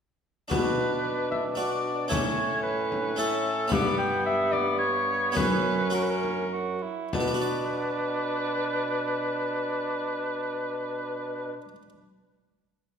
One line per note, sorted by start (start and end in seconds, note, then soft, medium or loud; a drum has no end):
0.48 2.08 B2 soft
0.48 2.08 B2 medium
0.48 1.54 D4 soft
0.48 1.54 D4 medium
0.48 1.55 F#4 soft
0.48 1.28 B4 medium
0.48 frame drum medium
1.31 1.43 E5 medium
1.31 frame drum soft
1.55 2.09 D4 soft
1.55 2.14 D4 soft
1.55 2.10 F#4 soft
1.55 2.09 D5 medium
2.08 3.68 A2 soft
2.08 3.14 C#4 soft
2.08 3.14 E4 soft
2.08 3.15 A4 soft
2.08 2.62 C#5 medium
2.08 frame drum medium
2.12 3.69 A2 medium
2.12 3.19 C#4 medium
2.63 3.17 B4 medium
2.92 frame drum soft
3.16 3.69 C#4 soft
3.16 3.75 C#4 medium
3.16 3.70 E4 soft
3.16 3.71 A4 medium
3.16 3.71 A4 soft
3.68 5.30 B3 soft
3.68 5.31 B4 soft
3.68 frame drum medium
3.72 5.33 G2 soft
3.72 5.34 G2 medium
3.72 5.37 B3 medium
3.72 3.98 D5 medium
3.98 4.25 G5 medium
4.26 4.54 E5 medium
4.52 4.78 D5 medium
4.52 frame drum soft
4.79 5.35 C#5 medium
5.32 6.79 F#2 soft
5.32 6.80 F#2 medium
5.32 5.90 B3 soft
5.32 5.89 C#4 soft
5.32 5.90 F#4 soft
5.32 5.93 B4 medium
5.36 5.94 C#4 medium
5.36 frame drum medium
5.90 7.08 C#4 soft
5.90 6.46 C#4 medium
5.90 7.08 F#4 soft
5.90 6.04 A#4 medium
6.03 6.11 B4 medium
6.10 6.53 A#4 medium
6.23 frame drum soft
6.53 6.84 F#4 medium
6.82 7.13 E4 medium
7.13 11.61 B2 soft
7.13 11.54 B2 medium
7.13 11.54 D4 medium
7.13 11.54 B4 medium
7.13 frame drum medium
7.21 11.68 B3 soft
7.28 11.75 D4 soft
7.34 11.82 F#4 soft
7.42 11.89 D5 soft